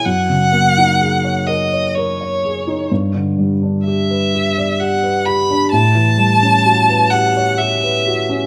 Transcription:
<<
  \new Staff \with { instrumentName = "Violin" } { \time 3/4 \key fis \dorian \tempo 4 = 64 fis''4. dis''8 cis''4 | r4 e''4 fis''8 b''8 | a''4. fis''8 e''4 | }
  \new Staff \with { instrumentName = "Grand piano" } { \time 3/4 \key fis \dorian fis,16 cis16 ais16 dis'16 gis'16 cis''16 ais'16 cis''16 ais'16 cis''16 gis'16 dis'16 | g,16 d16 g16 d'16 g'16 b'16 g'16 d''16 g'16 b'16 g'16 d'16 | a,16 e16 g16 cis'16 fis'16 b'16 g'16 cis''16 g'16 b'16 fis'16 cis'16 | }
>>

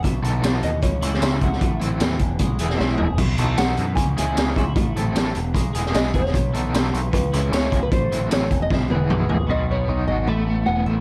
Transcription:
<<
  \new Staff \with { instrumentName = "Nylon-string guitar" } { \time 4/4 \key e \major \tempo 4 = 152 e''4. dis''8 cis''4 e''8 fis''8~ | fis''8 r2 r8 e''8 e''8~ | e''4 fis''4 gis''8 gis''4 e''8~ | e''8 r2 r8 dis''8 cis''8~ |
cis''2 b'4 cis''8. b'16 | c''4 cis''8. dis''16 e''8 b'4. | dis''8 cis''4 dis''8 e''4 fis''8 e''8 | }
  \new Staff \with { instrumentName = "Overdriven electric guitar" } { \time 4/4 \key e \major r8 <fis b dis' a'>8 <fis b dis' a'>8 r4 <cis gis cis' e'>8 <cis gis cis' e'>8 r8 | r8 <e a c' e'>8 <e a c' e'>8 r4 <e gis b e'>8 <e gis b e'>8 r8 | r8 <fis b dis' a'>8 <fis b dis' a'>8 r4 <gis cis' e' gis'>8 <gis cis' e' gis'>8 r8 | r8 <a c' e' a'>8 <a c' e' a'>8 r4 <gis b e' gis'>8 <gis b e' gis'>8 r8 |
r8 <fis b dis' a'>8 <fis b dis' a'>8 r4 <cis gis cis' e'>8 <cis gis cis' e'>8 r8 | r8 <e a c' e'>8 <e a c' e'>8 r4 <e gis b e'>8 <e gis b e'>8 r8 | b,8 b8 dis'8 fis'8 a8 a8 b8 a8 | }
  \new Staff \with { instrumentName = "Clean electric guitar" } { \clef bass \time 4/4 \key e \major b,8 e8 e8 b8 cis8 e'8 dis'8 e'8 | a,8 fis8 fis8 e,8 gis8 gis'8 b8 gis'8 | b,8 e8 e8 b8 cis8 e'8 dis'8 e'8 | a,8 fis8 fis8 e,8 gis8 gis'8 b8 gis'8 |
b,8 e8 e8 b8 cis8 e'8 dis'8 e'8 | a,8 fis8 fis8 e,8 gis8 gis'8 b8 gis'8 | <b, fis b dis' fis'>2 <a, e a b e'>2 | }
  \new Staff \with { instrumentName = "Picked electric bass" } { \clef bass \time 4/4 \key e \major b,,8 b,,8 b,,8 dis,8 cis,8 cis,8 cis,8 cis,8 | a,,8 a,,8 dis,8 e,,8 b,,8 e,,8 b,,8 e,,8 | b,,8 b,,8 b,,8 fis,8 cis,8 cis,8 cis,8 cis,8 | a,,8 a,,8 a,,8 e,,8 b,,8 e,,8 b,,8 e,,8 |
b,,8 b,,8 b,,8 b,,8 cis,8 cis,8 cis,8 cis,8 | a,,8 a,,8 a,,8 e,,8 b,,8 e,,8 b,,8 a,,8 | b,,4 b,,8 gis,,8 a,,4 e,,8 a,,8 | }
  \new DrumStaff \with { instrumentName = "Drums" } \drummode { \time 4/4 <hh bd>8 hh8 <hh sn tamb>8 hh8 <hh bd>8 hh16 sn16 <hh sn tamb>8 <hh bd>16 sn16 | <hh bd>8 hh8 <hh sn tamb>8 <hh bd>8 <hh bd>8 hh16 sn16 sn8 tomfh8 | <cymc hh bd>8 hh8 <hh sn tamb>8 hh8 <hh bd>8 hh8 <hh sn tamb>8 <hh bd>8 | <hh bd>8 hh8 <hh sn tamb>8 hh8 <hh bd>8 hh16 sn16 <hh sn tamb>8 <hh bd>16 sn16 |
<hh bd>8 hh8 <hh sn tamb>8 hh8 <hh bd>8 hh8 <hh sn tamb>8 <hh bd>8 | <hh bd>8 hh8 <hh sn tamb>8 <hh bd>8 <bd sn>8 tommh8 toml8 tomfh8 | r4 r4 r4 r4 | }
>>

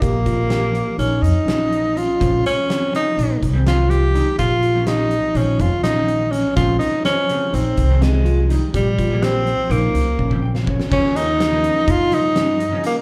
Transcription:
<<
  \new Staff \with { instrumentName = "Tenor saxophone" } { \time 9/8 \key bes \dorian \tempo 4. = 83 bes2 des'8 ees'4. f'8~ | f'8 des'4 ees'4 r8 f'8 g'4 | f'4 ees'4 des'8 f'8 ees'4 des'8 | f'8 ees'8 des'4 c'4 aes4 r8 |
g4 c'4 bes4. r4 | des'8 ees'4. f'8 ees'4. bes8 | }
  \new Staff \with { instrumentName = "Tine electric piano" } { \time 9/8 \key bes \dorian g'8 f'8 g'4 ees'4 des'4 des'8 | des'4 c'4 ees'4 c'8 f'8 ees'8 | g'8 f'8 g'4 ees'4 des'4 des'8 | des'4 c''4 ees'4 c'8 f'8 ees'8 |
g'8 f'8 g'4 ees'4 des'4 des'8 | des'8 ees'4 des'8 ees'4 des'8 ees'4 | }
  \new Staff \with { instrumentName = "Hollow-body jazz guitar" } { \clef bass \time 9/8 \key bes \dorian << { r1 r8 | r1 r8 | r1 r8 | r1 r8 |
r2. r8 g''16 f''16 des''8 | r1 r8 | } \\ { r1 r8 | <des f aes c'>4 r8 <des f aes c'>8 r8. <ees g aes c'>8. r8 <ees g aes ees'>8 | r8. <f g bes des'>8. r8 <ees f aes c'>8. r8 <ees f aes c'>8. r8 | <des f aes c'>4 r8 <des f aes c'>8 r8. <ees g aes c'>8. r8 <ees g aes ees'>8 |
r8. <des f g bes>8. r8 <des f g c'>8. r8 <des f g c'>8. r8 | <des f g bes>8. r8 <des f g bes>8. r8 <des f g bes>8. r8 <des f g des'>8. | } >> }
  \new Staff \with { instrumentName = "Upright bass" } { \clef bass \time 9/8 \key bes \dorian bes,,2 bes,,8 f,16 r16 bes,,4. | bes,,8 r4. bes,,8 c,2 | bes,,2 bes,,8 f,16 r16 bes,,4. | bes,,8 r4. bes,,8 c,2 |
bes,,2 bes,,8 des,16 r16 bes,,4. | ees,2 g,2 r8 | }
  \new DrumStaff \with { instrumentName = "Drums" } \drummode { \time 9/8 <hh bd>8 <hh bd>8 <hh sn>8 hh8 hh8 hh8 <hh sn>8 hh8 hh8 | <hh bd>8 <hh sn>8 <hh sn>8 hh8 hh8 <hh bd>8 <hh sn>8 hh8 hh8 | <hh bd>8 hh8 <hh sn>8 hh8 hh8 <hh bd>8 <hh sn>8 hh8 <hh sn>8 | <hh bd>8 <hh sn>8 <hh sn>8 hh8 hh8 <hh bd>8 <hh sn>8 hh8 hh8 |
<hh bd>8 <hh bd>8 <hh sn>8 <hh sn>8 hh8 hh8 bd16 bd8 sn16 bd16 sn16 | <cymc bd>8 hh8 <hh sn>8 hh8 <hh bd>8 hh8 <hh sn>8 hh8 hh8 | }
>>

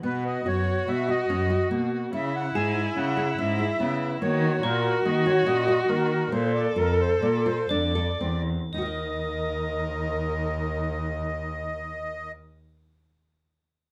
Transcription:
<<
  \new Staff \with { instrumentName = "Crotales" } { \time 5/4 \key ees \phrygian \tempo 4 = 139 << { r1 r4 | r1 r4 | r1 r4 | r1 r4 |
bes''''1~ bes''''4~ | bes''''1~ bes''''4 | } \\ { r1 r4 | r4 fes''''2~ fes''''16 r4. r16 | r4 aes''''2~ aes''''16 r4. r16 | r2. a''''2~ |
a''''16 r1 r8. | r1 r4 | } >> }
  \new Staff \with { instrumentName = "Accordion" } { \time 5/4 \key ees \phrygian b'8 dis''8 cis''4 fes''8 dis''4. r4 | fes''8 ges''8 aes''4 ges''4 fes''4. r8 | des''4 bes'4 ees''8 des''8 ees''4 bes'4 | c''8 d''8 bes'8 c''8 d''8 c''8 d''4. r8 |
ees''1~ ees''4~ | ees''1~ ees''4 | }
  \new Staff \with { instrumentName = "Viola" } { \time 5/4 \key ees \phrygian fis'1~ fis'4 | fes'1~ fes'4 | ges'1~ ges'4 | a'1~ a'8 r8 |
bes'1~ bes'4~ | bes'1~ bes'4 | }
  \new Staff \with { instrumentName = "Nylon-string guitar" } { \time 5/4 \key ees \phrygian b4 fis'4 b8 fis'8 cis'8 fis'8 bes4 | des'4 aes'4 des'8 aes'8 des'8 aes'8 ces'4 | bes4 ges'4 bes8 ges'8 des'8 ges'8 bes4 | bes4 f'4 bes8 f'8 d'8 a'8 c'4 |
<ees' ges' bes' ees''>1~ <ees' ges' bes' ees''>4~ | <ees' ges' bes' ees''>1~ <ees' ges' bes' ees''>4 | }
  \new Staff \with { instrumentName = "Cello" } { \clef bass \time 5/4 \key ees \phrygian b,4 fis,4 b,4 fis,4 b,4 | des4 aes,4 des4 aes,4 des4 | ees4 bes,4 ees4 bes,4 ees4 | bes,4 f,4 bes,4 f,4 fes,4 |
ees,1~ ees,4~ | ees,1~ ees,4 | }
>>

